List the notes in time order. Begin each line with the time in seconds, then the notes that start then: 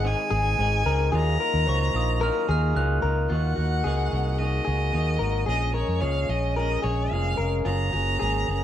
Already playing: G#1 G#4
0.03 G#2 D#3 G#3 C4 D#4 G#4 G#5
0.31 G#1 G#3 C4 D#4 G#4
0.57 G#1 G#3 C4 D#4 G#4
0.86 C#2 G#3 C4 D#4 G#4 A#4
1.11 D#2 D#3 F#3 A#3 D#4 F4 G#4 A#5
1.39 A#3 D#4 F4 A#4
1.54 D#2
1.66 C#2 F#3 A#3 D#4 F4 C5 C#6
1.93 A#1 A#3 D#4 F4 D#6
2.21 D#3 F#3 A#3 D#4 F4 A#4 F6
2.48 D#2 A#3 D#4 F4 G#4 F6
2.75 C#2 F#3 A#3 D#4 F4 F#6
3.02 C#2 D#4 F4 A#4
3.06 A#3
3.29 D#2 D#3 A#3 D#4 F4 F#4 F#5
3.56 D#2 A#3 D#4 F#4
3.84 C#2 D#3 A#3 D#4 F#4 G#4
4.11 C2 A#3 D#4 F#4
4.39 D#3 A#3 D#4 F#4 D#5
4.65 C#2 D#4 F#4 G#4
4.69 A#3
4.93 D#2 D#3 A#3 D#4 F#4
5.19 G#1 A#3 D#4 F#4 A#4
5.46 A#1 A#2 F3 G#3 C#4 G#4 D#5
5.74 C#4 G#4 A#4 C#5
5.78 G#3
5.88 F2
6.01 C#2 A#2 F3 G#3 C#4 G#4 C#5 F5
6.29 A#1 G#3 C#4 G#4 D#5
6.56 F3 G#3 C#4 G#4 A#4 D#5
6.82 A#1 G#3 C#4 G#4 C#5
7.11 F1 A#2 F3 G#3 C#4 G#4 F5
7.37 F1 G#3 C#4 G#4 A#4
7.65 F#1 F#3 A#3 C#4 F4 G#4 A#5
7.92 F#1 A#3 C#4 F#4 G#4
8.19 G#1 F#3 A#3 C#4 G#4
8.48 F#1 A#3 C#4 G#4